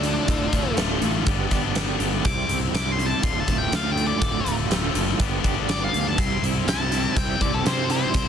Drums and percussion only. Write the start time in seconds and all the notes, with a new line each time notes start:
0.03 closed hi-hat
0.28 kick, closed hi-hat
0.53 kick, closed hi-hat
0.77 snare, closed hi-hat
1.02 closed hi-hat
1.26 kick, closed hi-hat
1.51 kick, snare, closed hi-hat
1.75 snare, closed hi-hat
2.00 closed hi-hat
2.25 kick, closed hi-hat
2.49 closed hi-hat
2.75 snare, closed hi-hat
2.99 closed hi-hat
3.23 kick, closed hi-hat
3.48 kick, snare, closed hi-hat
3.72 snare, closed hi-hat
3.97 closed hi-hat
4.22 kick, closed hi-hat
4.46 closed hi-hat
4.71 snare, closed hi-hat
4.95 closed hi-hat
5.20 kick, closed hi-hat
5.44 kick, closed hi-hat
5.69 snare, closed hi-hat
5.94 closed hi-hat
6.18 kick, closed hi-hat
6.44 closed hi-hat
6.68 snare, closed hi-hat
6.92 closed hi-hat
7.17 kick, closed hi-hat
7.41 kick, closed hi-hat
7.66 snare, closed hi-hat
7.90 closed hi-hat
8.14 kick, closed hi-hat